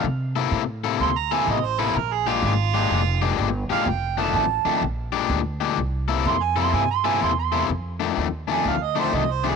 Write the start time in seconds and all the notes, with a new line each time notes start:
0.04 C3
0.36 C3 A#3 E4 A4
0.51 A2
0.84 C3 A#3 E4 A4
1.00 D2 C6
1.18 A#5
1.31 C3 A#3 E4 A4 G#5
1.47 A1 D#5
1.65 C5
1.79 C3 A#3 E4 A4 B4
1.95 A#1 A#4
2.13 G#4
2.27 A#2 G#3 D4 F4 G4
2.43 G#1 F4
2.74 A#2 G#3 D4 G4
2.91 F1
3.22 A#2 G#3 D4 G4
3.38 G1
3.70 A#2 G#3 D4 G4 F5, muted upright bass stroke
3.86 F1 G5
4.18 F2 D#3 A3 D4 A5
4.34 A1 A5
4.65 F2 D#3 A3 D4, muted upright bass stroke
4.82 A#1
5.12 A#2 G#3 D4 G4
5.29 D2
5.60 A#2 G#3 D4 G4
5.78 C2
6.08 C3 A#3 E4 A4
6.25 F2 C6
6.43 G#5
6.56 C3 A#3 E4 A4 C6
6.73 G2 G#5
6.91 C6
7.04 C3 A#3 E4 A4 G#5
7.21 E2 C6
7.39 C6
7.52 C3 A#3 E4 A4
7.69 F2
8.00 F2 D#3 A3 D4
8.17 D#2
8.48 F2 D#3 A3 D4
8.52 G#5
8.65 D2 F5
8.83 D#5
8.95 F2 D#3 A3 D4
8.99 C5
9.13 C2 D#5
9.32 C5
9.44 F2 D#3 A3 D4
9.48 G#4